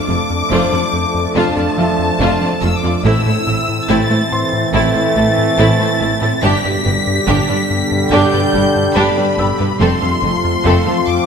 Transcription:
Already playing: F3 A3 D4 A4 D6
0.08 F1 F2 A3 F4 A4
0.30 F2
0.51 F1 F2 A3 D4 F4 C5
0.72 F2 F3 A3 F4 A4 D5
0.93 F2
1.14 F2
1.35 F1 F2 A3 D4 F4 A5
1.56 F2 A3 F4 A4 D5
1.78 F1 F2 F3 A3 F4 A4 E5
1.99 F2
2.20 F1 F2 A3 D4 F4
2.41 F2 F3 A3 F4 A4 D5
2.62 F1 F2 A3 F4 A4 E6
2.77 D6
2.83 F2 A3 F4 A4 D5
3.04 A1 A2 E3 A3 C4 E4 A4 E6
3.26 A2 A3 E4 A4 C5
3.47 A1 A2 A3 E4 A4
3.69 A2
3.89 A1 A2 A3 C4 E4 A6
4.10 A2 A3 E4 A4 C5
4.32 A2 C5 C6
4.53 A2
4.73 A1 A2 A3 C4 E4 A6
4.94 A2 A3 E4 A4 C5
5.16 A1 A2 A3 E4 A4
5.38 A2
5.58 A1 A2 A3 C4 E4
5.79 A2 A3 E4 A4 C5
6.00 A1 A2 A3 E4 A4
6.21 A2 A3 E4 A4 C5
6.42 G1 G2 B2 D3 G3 D4 G4 B6
6.63 G2 D4 G4 B4 D5
6.85 G1 G2 D4 G4 B4
7.07 G2
7.26 G1 G2 D4 G4
7.47 G2 G3 D4 G4 B4 D5
7.70 G2
7.92 G2
8.11 G1 G2 D4 G4 G6
8.32 G2 D4 G4 B4 D5
8.54 G1 G2 G3 D4 G4 B4
8.76 G2
8.95 G1 G2 D4 G4 B5
9.16 G2 G3 D4 G4 B4 D5
9.37 G1 G2 D4 G4 B4 E6
9.58 G2 D4 G4 B4 D5
9.80 F1 F2 F3 A3 C4 F4 A4 C6
10.01 F2 A3 A4 F5
10.22 F1 F2 A3 F4 A4 C5
10.44 F2
10.64 F1 F2 A3 C4 A4
10.86 F2 F3 A3 A4 F5
11.07 F2 D6

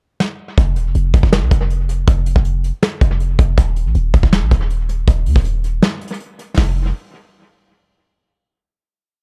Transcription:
0.20 snare
0.58 F1, kick, closed hi-hat
0.76 D#1, closed hi-hat
0.86 F1
0.95 F1, closed hi-hat
1.14 F1, kick, closed hi-hat
1.23 F1, kick
1.32 snare, closed hi-hat
1.42 C2
1.51 F1, kick, closed hi-hat
1.70 closed hi-hat
1.89 closed hi-hat
2.08 F1, kick, closed hi-hat
2.26 closed hi-hat
2.36 F1, kick
2.45 closed hi-hat
2.64 closed hi-hat
2.82 snare, closed hi-hat
3.01 F1, kick, closed hi-hat
3.20 closed hi-hat
3.39 F1, kick, closed hi-hat
3.58 D#1, kick, closed hi-hat
3.76 closed hi-hat
3.86 A#1
3.95 D#1, closed hi-hat
4.14 D#1, kick, closed hi-hat
4.23 D#1, kick
4.32 snare, closed hi-hat
4.42 A#1
4.51 D#1, kick, closed hi-hat
4.70 closed hi-hat
4.89 closed hi-hat
5.08 D#1, kick, closed hi-hat
5.26 D#2, open hi-hat
5.36 D#1, kick
5.45 closed hi-hat
5.64 closed hi-hat
5.82 snare, closed hi-hat
6.01 closed hi-hat
6.08 closed hi-hat
6.14 closed hi-hat
6.20 closed hi-hat
6.39 closed hi-hat
6.58 F1, kick, snare, open hi-hat

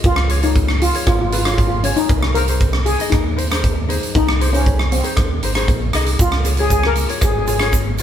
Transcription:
0.04 C#2 F4, kick, closed hi-hat
0.16 cross-stick
0.29 F4 G#4 C#5, closed hi-hat
0.42 D#4 F4 G#4 C#5, closed hi-hat
0.56 kick, closed hi-hat
0.68 cross-stick
0.82 F4, closed hi-hat
0.94 F4 G#4 C#5, closed hi-hat
1.07 G#1 F4, kick, cross-stick, closed hi-hat
1.14 F4
1.21 F4
1.30 F4 G#4 B4, closed hi-hat
1.38 F4
1.45 F4 G#4 C#5, cross-stick, closed hi-hat
1.53 F4
1.58 F4, kick, closed hi-hat
1.67 F4
1.83 C#4 F4 G#4 C#5, closed hi-hat
1.96 D#4, closed hi-hat
2.09 C2, kick, closed hi-hat
2.23 cross-stick
2.35 D#4 G#4 A#4 C5, closed hi-hat
2.48 D#4 G#4 C5, closed hi-hat
2.60 kick, closed hi-hat
2.73 cross-stick
2.86 G#4, closed hi-hat
2.99 D#4 G#4 D#5, closed hi-hat
3.10 D#2 D#4, kick, cross-stick, closed hi-hat
3.37 D#4 G#4 C5, closed hi-hat
3.50 D#4 G#4 C5, cross-stick, closed hi-hat
3.64 kick, closed hi-hat
3.88 D#4 G#4 C5, closed hi-hat
4.03 closed hi-hat
4.15 C2 D#4, kick, closed hi-hat
4.29 cross-stick
4.40 D#4 G#4 C5, closed hi-hat
4.53 C#4 D#4 G#4 C5, closed hi-hat
4.66 kick, closed hi-hat
4.79 cross-stick
4.92 C4, closed hi-hat
5.03 D#4 G#4 C5, closed hi-hat
5.17 D#2, kick, cross-stick, closed hi-hat
5.42 G#1 D#4 G#4 C5, closed hi-hat
5.55 D#4 G#4 C5, cross-stick, closed hi-hat
5.68 A#1, kick, closed hi-hat
5.93 C2 D#4 G#4 D#5, cross-stick, closed hi-hat
6.06 closed hi-hat
6.19 C#2 F4, kick, closed hi-hat, shaker
6.32 cross-stick
6.44 F4 G#4 C#5, closed hi-hat, shaker
6.57 F4 G#4 C#5, closed hi-hat
6.70 G#4, kick, closed hi-hat, shaker
6.83 A#4, cross-stick
6.96 closed hi-hat, shaker
7.08 F4 G#4 C#5, closed hi-hat
7.21 G#1 G#4, kick, cross-stick, closed hi-hat, shaker
7.32 G#4
7.38 G#4
7.46 F4 G#4 C#5, closed hi-hat, shaker
7.53 G#4
7.60 F4 G#4 C#5, cross-stick, closed hi-hat
7.73 kick, closed hi-hat, shaker
7.98 F4, closed hi-hat, shaker

